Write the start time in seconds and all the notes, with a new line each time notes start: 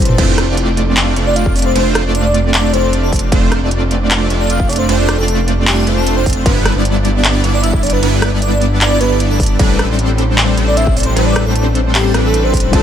Already playing: A1 G3 C4 D4 E4 A4 B4 C5
0.00 G4, closed hi-hat
0.05 A4, closed hi-hat, mid tom
0.18 F1 A3 C4 D4 F4 C5, kick, closed hi-hat, crash
0.38 cross-stick, closed hi-hat
0.48 F1 A3 C4 D4 F4 D5
0.57 closed hi-hat
0.77 closed hi-hat
0.97 clap, closed hi-hat, crash
1.16 F1 A3 C4 D4 F4 D5, closed hi-hat
1.26 D5
1.36 F5, closed hi-hat
1.46 kick
1.56 D5, closed hi-hat, open hi-hat
1.62 C5, closed hi-hat
1.75 F1 A3 C4 D4 F4 C5, closed hi-hat, crash
1.95 cross-stick, closed hi-hat
2.05 F1 A3 C4 D4 F4 D5
2.15 D5, closed hi-hat
2.25 D5
2.34 closed hi-hat
2.54 D5, clap, closed hi-hat, crash
2.63 D5
2.73 F1 A3 C4 D4 F4 C5 D5, closed hi-hat
2.93 closed hi-hat
3.03 A4
3.12 A4, kick, closed hi-hat, open hi-hat
3.19 closed hi-hat
3.32 F1 A3 C4 D4 F4 C5, kick, closed hi-hat, crash
3.52 cross-stick, closed hi-hat
3.62 F1 A3 C4 D4 F4 D5
3.71 closed hi-hat
3.91 closed hi-hat
4.11 clap, closed hi-hat, crash
4.30 F1 A3 C4 D4 F4 D5, closed hi-hat
4.40 D5
4.50 F5, closed hi-hat
4.60 kick
4.69 D5, closed hi-hat, open hi-hat
4.76 C5, closed hi-hat
4.89 F1 A3 C4 D4 F4 C5, closed hi-hat, crash
4.98 D5
5.09 cross-stick, closed hi-hat
5.18 F1 A3 C4 D4 F4 A4 D5
5.28 A4, closed hi-hat
5.48 closed hi-hat
5.67 G4, clap, closed hi-hat, crash
5.87 F1 A3 C4 D4 F4 C5, closed hi-hat
5.97 A4
6.07 closed hi-hat
6.17 C5
6.26 kick, closed hi-hat, open hi-hat
6.33 closed hi-hat
6.46 G1 G3 B3 D4 E4 B4, kick, closed hi-hat, crash
6.65 cross-stick, closed hi-hat
6.75 G1 G3 B3 D4 E4 D5
6.85 closed hi-hat
7.05 closed hi-hat
7.24 clap, closed hi-hat, crash
7.44 G1 G3 B3 D4 E4 D5, closed hi-hat
7.54 D5
7.63 E5, closed hi-hat
7.73 kick
7.83 D5, closed hi-hat, open hi-hat
7.90 B4, closed hi-hat
8.02 G1 G3 B3 D4 E4 B4, closed hi-hat, crash
8.22 cross-stick, closed hi-hat
8.32 G1 G3 B3 D4 E4 D5
8.42 D5, closed hi-hat
8.52 D5
8.61 closed hi-hat
8.81 D5, clap, closed hi-hat, crash
8.91 D5
9.00 G1 G3 B3 D4 E4 B4 D5, closed hi-hat
9.20 closed hi-hat
9.30 A4
9.40 A4, kick, closed hi-hat, open hi-hat
9.46 closed hi-hat
9.59 A1 G3 C4 D4 A4 B4, kick, closed hi-hat, crash
9.79 cross-stick, closed hi-hat
9.89 A1 G3 C4 D4 A4 C5
9.99 closed hi-hat
10.18 closed hi-hat
10.38 clap, closed hi-hat, crash
10.57 A1 G3 C4 D4 A4 C5, closed hi-hat
10.67 D5
10.77 E5, closed hi-hat
10.87 kick
10.97 D5, closed hi-hat, open hi-hat
11.03 C5, closed hi-hat
11.16 A1 G3 C4 D4 A4 B4 C5, closed hi-hat, crash
11.26 D5
11.36 cross-stick, closed hi-hat
11.46 A1 G3 C4 D4 A4 C5
11.55 A4, closed hi-hat
11.75 closed hi-hat
11.95 G4, clap, closed hi-hat, crash
12.14 A1 G3 C4 D4 A4 B4, cross-stick, closed hi-hat
12.24 A4
12.34 closed hi-hat
12.44 C5
12.53 kick, closed hi-hat, open hi-hat
12.60 closed hi-hat
12.71 F1 F3 A3 C4 D4 F4 C5, kick, closed hi-hat, crash
12.75 A4